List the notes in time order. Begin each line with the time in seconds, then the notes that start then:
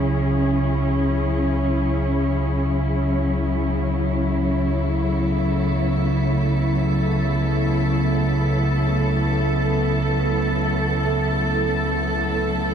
Already playing: C#2 C#3 F#3 C#4 E4 G#4
4.06 A3 A4
5.10 B3
6.94 A4